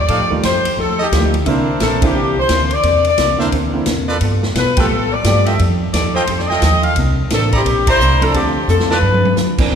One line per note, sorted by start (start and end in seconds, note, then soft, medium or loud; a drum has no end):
0.00 0.31 D5 loud
0.08 0.22 A2 medium
0.08 0.32 F3 soft
0.08 0.32 A3 soft
0.08 0.24 D#4 medium
0.08 0.33 D#4 soft
0.08 0.24 G4 medium
0.08 0.33 G4 medium
0.08 0.24 A4 medium
0.08 0.24 F5 medium
0.08 kick soft
0.08 ride medium
0.21 0.31 F2 medium
0.30 0.42 D#2 medium
0.30 0.42 D#3 medium
0.30 0.42 G3 medium
0.30 0.43 A3 medium
0.30 0.43 F4 medium
0.43 0.63 F2 medium
0.43 0.66 F3 medium
0.43 0.66 A3 medium
0.43 0.66 D#4 medium
0.43 0.67 G4 medium
0.43 0.76 C5 medium
0.43 kick soft
0.43 snare medium
0.43 hi-hat pedal soft
0.43 ride medium
0.64 muted upright bass stroke soft
0.64 ride medium
0.77 1.11 D#2 medium
0.77 1.00 F3 soft
0.77 1.01 A3 soft
0.77 1.01 D#4 soft
0.77 1.01 G4 soft
0.77 1.01 A4 medium
0.77 kick soft
0.99 1.08 D#4 medium
0.99 1.08 G4 medium
0.99 1.35 G4 medium
0.99 1.08 A4 medium
0.99 1.08 D#5 loud
1.12 1.46 D2 medium
1.12 1.32 D#3 medium
1.12 1.35 F3 medium
1.12 1.32 G3 medium
1.12 1.35 A3 medium
1.12 1.32 A3 medium
1.12 1.36 D#4 medium
1.12 1.33 F4 medium
1.12 1.36 G4 medium
1.12 kick soft
1.12 snare medium
1.12 hi-hat pedal medium
1.12 ride medium
1.34 ride soft
1.46 1.79 C2 medium
1.46 1.69 C3 medium
1.46 1.66 D3 medium
1.46 1.69 E3 medium
1.46 1.66 A#3 medium
1.46 1.70 A#3 medium
1.46 1.66 C4 medium
1.46 2.42 D4 medium
1.46 1.70 D4 medium
1.46 1.66 E4 medium
1.46 2.42 A#4 medium
1.46 2.42 C5 medium
1.46 2.42 E5 medium
1.46 kick soft
1.46 ride medium
1.80 2.14 A#1 medium
1.80 2.04 C3 medium
1.80 2.04 E3 medium
1.80 2.04 A#3 medium
1.80 2.05 D4 medium
1.80 2.02 A4 medium
1.80 kick soft
1.80 snare medium
1.80 hi-hat pedal soft
1.80 ride medium
2.01 2.13 D3 medium
2.01 2.14 A#3 medium
2.01 2.14 C4 medium
2.01 2.14 E4 medium
2.01 2.38 G4 medium
2.01 kick medium
2.01 ride medium
2.15 2.48 C2 medium
2.15 2.38 C3 soft
2.15 2.39 E3 soft
2.15 2.39 A#3 soft
2.15 2.40 D4 medium
2.40 2.70 C5 medium
2.49 2.83 D2 medium
2.49 2.73 C3 medium
2.49 2.73 E3 medium
2.49 2.73 A#3 medium
2.49 2.74 D4 medium
2.49 kick soft
2.49 snare medium
2.49 hi-hat pedal soft
2.49 ride medium
2.71 3.06 D5 loud
2.71 ride soft
2.83 3.17 E2 medium
2.83 3.07 C3 soft
2.83 3.07 E3 soft
2.83 3.07 A#3 soft
2.83 3.08 D4 medium
2.83 kick soft
2.83 ride medium
3.04 3.39 D5 medium
3.04 ride soft
3.18 3.51 C2 medium
3.18 3.41 C3 medium
3.18 3.41 E3 medium
3.18 3.42 A#3 medium
3.18 3.42 D4 medium
3.18 kick soft
3.18 snare medium
3.18 hi-hat pedal soft
3.18 ride medium
3.38 3.51 D3 medium
3.38 3.51 A#3 soft
3.38 3.52 C4 soft
3.38 3.49 D4 medium
3.38 3.52 E4 medium
3.38 3.49 A#4 medium
3.38 3.49 C5 medium
3.38 3.49 E5 medium
3.52 3.86 D2 medium
3.52 3.76 C3 medium
3.52 3.76 E3 soft
3.52 3.77 A#3 medium
3.52 3.77 D4 medium
3.52 kick soft
3.52 ride soft
3.74 3.86 D3 medium
3.74 3.86 A#3 medium
3.74 3.86 C4 soft
3.74 3.87 E4 medium
3.86 4.20 E2 medium
3.86 4.10 C3 medium
3.86 4.10 E3 medium
3.86 4.10 A#3 medium
3.86 4.10 D4 medium
3.86 kick soft
3.86 snare medium
3.86 hi-hat pedal medium
3.86 ride medium
4.09 4.17 F4 medium
4.09 4.18 A4 medium
4.09 4.17 B4 medium
4.09 4.17 D5 medium
4.21 4.54 G2 medium
4.21 4.44 G3 soft
4.21 4.45 B3 medium
4.21 4.45 F4 medium
4.21 4.45 A4 medium
4.21 kick soft
4.21 ride medium
4.43 snare medium
4.55 4.89 B2 medium
4.55 4.79 G3 medium
4.55 4.79 B3 medium
4.55 4.79 F4 medium
4.55 4.80 A4 medium
4.55 4.77 B4 medium
4.55 kick soft
4.55 snare medium
4.55 hi-hat pedal medium
4.55 ride medium
4.77 4.89 F3 medium
4.77 4.89 A3 medium
4.77 4.89 B3 medium
4.77 4.86 F4 medium
4.77 4.90 G4 medium
4.77 4.86 A4 medium
4.77 5.13 A4 medium
4.77 4.87 B4 medium
4.77 4.87 G5 medium
4.77 kick medium
4.77 ride medium
4.90 5.24 A2 medium
4.90 5.13 G3 soft
4.90 5.14 B3 soft
4.90 5.14 F4 soft
4.90 5.15 A4 soft
5.13 5.47 D5 medium
5.24 5.58 G2 medium
5.24 5.59 F3 medium
5.24 5.48 G3 medium
5.24 5.59 A3 soft
5.24 5.60 B3 medium
5.24 5.48 B3 medium
5.24 5.48 F4 medium
5.24 5.60 G4 medium
5.24 5.48 A4 medium
5.24 kick soft
5.24 snare medium
5.24 hi-hat pedal medium
5.24 ride medium
5.46 5.55 F4 medium
5.46 5.55 A4 medium
5.46 5.55 D#5 medium
5.46 5.59 E5 medium
5.46 5.55 G5 medium
5.46 ride soft
5.59 5.93 F2 medium
5.59 5.82 F3 medium
5.59 5.82 D#4 soft
5.59 5.83 G4 soft
5.59 5.83 A4 soft
5.59 kick soft
5.59 ride medium
5.93 6.27 D#2 medium
5.93 6.17 F3 medium
5.93 6.17 D#4 medium
5.93 6.17 G4 medium
5.93 6.18 A4 medium
5.93 6.14 D5 medium
5.93 kick soft
5.93 snare medium
5.93 hi-hat pedal medium
5.93 ride medium
6.15 6.24 F4 medium
6.15 6.24 A4 medium
6.15 6.39 C5 medium
6.15 6.24 D#5 medium
6.15 6.24 G5 loud
6.27 6.61 F2 medium
6.27 6.51 F3 soft
6.27 6.51 D#4 soft
6.27 6.52 G4 medium
6.27 6.52 A4 medium
6.27 kick soft
6.27 ride medium
6.39 6.49 D5 medium
6.39 snare soft
6.48 6.95 F4 medium
6.48 6.95 A4 medium
6.48 6.83 D#5 loud
6.48 6.95 D#5 medium
6.48 6.95 G5 medium
6.48 snare soft
6.62 6.96 D#2 medium
6.62 6.86 F3 medium
6.62 6.86 D#4 medium
6.62 6.86 G4 medium
6.62 6.86 A4 medium
6.62 kick soft
6.62 snare medium
6.62 hi-hat pedal medium
6.62 ride medium
6.83 6.96 F5 medium
6.83 ride soft
6.96 7.30 C2 medium
6.96 7.20 C3 medium
6.96 7.20 A#3 soft
6.96 7.21 D4 medium
6.96 kick soft
6.96 ride medium
7.00 7.21 E4 medium
7.30 7.64 A1 medium
7.30 7.54 C3 medium
7.30 7.50 E3 soft
7.30 7.54 A#3 medium
7.30 7.50 C4 soft
7.30 7.51 D4 soft
7.30 7.54 D4 medium
7.30 7.55 E4 medium
7.30 7.53 A4 medium
7.30 7.51 A#4 medium
7.30 kick soft
7.30 snare medium
7.30 hi-hat pedal medium
7.30 ride medium
7.53 7.62 E4 medium
7.53 7.89 G4 medium
7.53 7.62 C5 medium
7.53 7.62 D5 medium
7.53 7.62 A#5 loud
7.53 kick medium
7.53 ride soft
7.64 7.99 A#1 medium
7.64 7.88 C3 soft
7.64 7.88 A#3 soft
7.64 7.89 D4 medium
7.64 7.89 E4 soft
7.64 kick soft
7.64 ride medium
7.87 8.32 E4 medium
7.87 8.32 C5 medium
7.87 8.21 C5 loud
7.87 8.32 D5 medium
7.87 8.32 A#5 loud
7.87 kick medium
7.87 ride medium
7.99 8.33 C2 medium
7.99 8.23 C3 medium
7.99 8.23 A#3 medium
7.99 8.23 D4 medium
7.99 8.24 E4 medium
7.99 hi-hat pedal medium
8.21 8.66 F3 medium
8.21 8.66 C4 medium
8.21 8.67 D4 soft
8.21 8.35 A4 medium
8.21 8.67 A4 medium
8.21 ride soft
8.34 8.67 D2 medium
8.34 8.57 D3 soft
8.34 8.57 A3 soft
8.34 8.58 C4 medium
8.34 8.86 F4 medium
8.34 8.58 F4 soft
8.34 8.69 G4 medium
8.34 8.86 C5 medium
8.34 8.86 D5 medium
8.34 8.86 A5 medium
8.34 kick soft
8.34 ride medium
8.68 9.01 F2 medium
8.68 8.92 D3 medium
8.68 8.92 A3 medium
8.68 8.92 C4 medium
8.68 8.93 F4 medium
8.68 8.89 A4 medium
8.68 hi-hat pedal soft
8.80 snare soft
8.90 8.99 F4 medium
8.90 8.99 B4 medium
8.90 9.38 B4 medium
8.90 8.99 D5 medium
8.90 8.99 A5 loud
8.90 snare medium
9.02 9.36 G2 medium
9.02 9.25 G3 soft
9.02 9.26 D4 soft
9.02 9.26 F4 soft
9.02 9.27 B4 soft
9.02 high tom medium
9.14 high tom medium
9.25 high tom medium
9.36 9.57 D2 medium
9.36 9.60 G3 medium
9.36 9.60 D4 medium
9.36 9.60 F4 medium
9.36 9.61 B4 medium
9.36 snare soft
9.36 hi-hat pedal medium
9.58 9.75 E3 medium
9.58 9.75 C4 medium
9.58 9.75 D4 medium
9.58 9.75 A#4 medium
9.58 muted upright bass stroke soft
9.58 kick medium
9.58 crash medium
9.71 9.75 C2 medium
9.71 9.75 C3 medium
9.71 kick soft